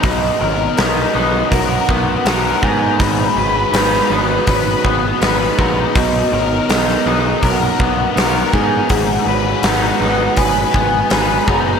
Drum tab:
HH |o---o---o---o---|o---o---o---o---|o---o---o---o---|o---o---o---o---|
SD |----o-------o---|----oo------o---|----oo------o---|----o-------o---|
BD |o-------o-o---o-|o-------o-o---o-|o-------o-o---o-|o-------o-o---o-|